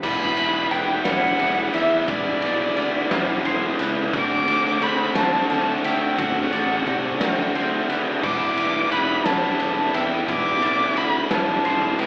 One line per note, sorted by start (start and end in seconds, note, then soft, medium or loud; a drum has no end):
0.03 0.30 E1 medium
0.03 0.71 E3 medium
0.03 0.72 G3 loud
0.03 0.73 B3 loud
0.03 0.73 E4 loud
0.03 12.06 D5 medium
0.03 4.10 E5 medium
0.03 0.73 B5 loud
0.03 kick loud
0.03 crash loud
0.37 0.64 E1 medium
0.37 ride medium
0.71 0.99 E1 medium
0.71 1.07 E3 medium
0.71 1.07 G3 medium
0.71 1.06 B3 medium
0.71 1.05 E4 medium
0.71 1.40 B4 medium
0.71 1.04 G5 loud
0.71 ride medium
1.05 1.33 E1 medium
1.05 1.38 E3 medium
1.05 1.40 G3 medium
1.05 1.40 B3 medium
1.05 1.41 E4 medium
1.05 1.70 F#5 medium
1.05 snare loud
1.05 ride loud
1.39 1.67 E1 medium
1.39 2.07 E3 medium
1.39 2.08 G3 medium
1.39 2.08 B3 medium
1.39 2.09 E4 medium
1.39 ride medium
1.74 2.01 E2 medium
1.74 2.43 E5 medium
1.74 2.06 E5 medium
1.74 ride medium
2.08 2.35 E1 medium
2.08 2.76 E3 loud
2.08 2.77 G3 loud
2.08 2.77 B3 loud
2.08 2.78 E4 loud
2.08 3.42 D5 loud
2.08 kick loud
2.08 ride loud
2.42 2.69 B1 medium
2.42 3.46 D5 medium
2.42 ride medium
2.76 3.04 D2 medium
2.76 3.12 E3 medium
2.76 3.12 G3 medium
2.76 3.10 B3 medium
2.76 3.10 E4 medium
2.76 ride medium
3.11 3.38 E1 loud
3.11 3.44 E3 medium
3.11 3.45 G3 medium
3.11 3.45 B3 medium
3.11 3.45 E4 medium
3.11 snare loud
3.11 ride loud
3.45 3.72 E1 medium
3.45 4.11 E3 medium
3.45 4.14 G3 medium
3.45 4.12 B3 medium
3.45 4.12 E4 medium
3.45 3.80 C6 medium
3.45 ride medium
3.79 4.06 C#2 loud
3.79 4.14 B4 medium
3.79 ride medium
4.13 4.40 D2 medium
4.13 4.81 D3 loud
4.13 4.82 A3 loud
4.13 8.20 C4 medium
4.13 4.83 C4 loud
4.13 4.83 F#4 loud
4.13 8.19 A5 medium
4.13 4.84 D6 loud
4.13 kick loud
4.13 ride loud
4.48 4.75 D2 loud
4.48 ride medium
4.81 5.09 D2 medium
4.81 5.16 D3 medium
4.81 5.16 A3 medium
4.81 5.15 C4 medium
4.81 5.14 F#4 medium
4.81 5.50 C5 medium
4.81 5.16 B5 loud
4.81 ride medium
5.15 5.44 D2 loud
5.15 5.48 D3 medium
5.15 5.49 A3 medium
5.15 5.50 C4 medium
5.15 5.50 F#4 loud
5.15 5.48 A5 loud
5.15 snare loud
5.15 ride loud
5.50 5.77 D2 medium
5.50 6.17 D3 medium
5.50 6.18 A3 medium
5.50 6.19 C4 medium
5.50 6.19 F#4 medium
5.50 5.82 A5 loud
5.50 ride medium
5.84 6.11 D3 loud
5.84 6.53 E5 medium
5.84 6.19 G5 loud
5.84 ride medium
6.18 6.45 D2 medium
6.18 6.85 D3 loud
6.18 6.86 A3 loud
6.18 6.87 C4 loud
6.18 6.88 F#4 loud
6.18 7.55 F#5 medium
6.18 kick loud
6.18 ride loud
6.53 6.80 A1 medium
6.53 7.55 D5 medium
6.53 ride medium
6.87 7.14 C3 medium
6.87 7.21 D3 medium
6.87 7.20 A3 medium
6.87 7.20 C4 medium
6.87 7.19 F#4 medium
6.87 kick medium
6.87 ride medium
7.20 7.48 D2 loud
7.20 7.54 D3 medium
7.20 7.54 A3 medium
7.20 7.56 C4 medium
7.20 7.56 F#4 loud
7.20 snare loud
7.20 ride loud
7.55 7.82 D2 medium
7.55 8.21 D3 medium
7.55 8.22 A3 medium
7.55 8.22 C4 medium
7.55 8.22 F#4 medium
7.55 7.89 C5 medium
7.55 ride medium
7.89 8.16 D2 medium
7.89 8.23 B4 medium
7.89 ride medium
8.22 8.50 E1 medium
8.22 8.90 E3 loud
8.22 8.91 G3 loud
8.22 8.91 B3 loud
8.22 8.92 E4 loud
8.22 12.06 E5 medium
8.22 10.26 B5 loud
8.22 8.93 D6 loud
8.22 kick loud
8.22 crash loud
8.57 8.84 E1 medium
8.57 ride medium
8.90 9.19 E1 medium
8.90 9.26 E3 medium
8.90 9.26 G3 medium
8.90 9.25 B3 medium
8.90 9.23 E4 medium
8.90 9.60 B4 medium
8.90 9.27 B5 loud
8.90 ride medium
9.25 9.53 E1 medium
9.25 9.58 E3 medium
9.25 9.59 G3 medium
9.25 9.59 B3 medium
9.25 9.60 E4 medium
9.25 9.95 A5 loud
9.25 snare loud
9.25 ride loud
9.59 9.87 E1 medium
9.59 10.26 E3 medium
9.59 10.28 G3 medium
9.59 10.27 B3 medium
9.59 10.28 E4 medium
9.59 ride medium
9.94 10.22 E2 loud
9.94 10.62 E5 medium
9.94 10.28 G5 loud
9.94 ride medium
10.27 10.55 E1 medium
10.27 10.94 E3 medium
10.27 10.96 G3 loud
10.27 10.96 B3 loud
10.27 10.96 E4 loud
10.27 12.06 A5 medium
10.27 10.98 D6 loud
10.27 kick loud
10.27 ride loud
10.62 10.89 B1 medium
10.62 11.65 D5 medium
10.62 ride medium
10.96 11.24 D2 medium
10.96 11.31 E3 medium
10.96 11.31 G3 medium
10.96 11.30 B3 medium
10.96 11.29 E4 medium
10.96 11.31 B5 loud
10.96 ride medium
11.30 11.58 E1 loud
11.30 11.63 E3 medium
11.30 11.65 G3 medium
11.30 11.65 B3 loud
11.30 11.66 E4 medium
11.30 12.01 A5 loud
11.30 snare loud
11.30 ride loud
11.64 11.92 E1 medium
11.64 12.06 E3 medium
11.64 12.06 G3 medium
11.64 12.06 B3 medium
11.64 12.06 E4 medium
11.64 11.99 C6 medium
11.64 ride medium
11.99 12.06 C#2 loud
11.99 12.06 B4 medium
11.99 12.06 G5 medium
11.99 ride medium